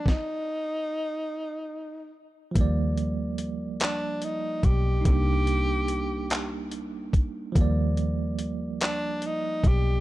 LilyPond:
<<
  \new Staff \with { instrumentName = "Tenor saxophone" } { \time 6/8 \key ees \major \tempo 4. = 48 ees'2~ ees'8 r8 | r4. d'8 ees'8 g'8 | g'2 r4 | r4. d'8 ees'8 g'8 | }
  \new Staff \with { instrumentName = "Tine electric piano" } { \time 6/8 \key ees \major r2. | <f g bes d''>2. | <g bes d' ees'>2. | <f g bes d''>2. | }
  \new Staff \with { instrumentName = "Fingered electric bass" } { \clef bass \time 6/8 \key ees \major r2. | ees,2~ ees,8 ces,8 | c,2~ c,8 d,8 | ees,2~ ees,8 ces,8 | }
  \new DrumStaff \with { instrumentName = "Drums" } \drummode { \time 6/8 <bd sn>4. r4. | <hh bd>8 hh8 hh8 <hc hh>8 hh8 <hh bd>8 | <hh bd>8 hh8 hh8 <hc hh>8 hh8 <hh bd>8 | <hh bd>8 hh8 hh8 <hc hh>8 hh8 <hh bd>8 | }
>>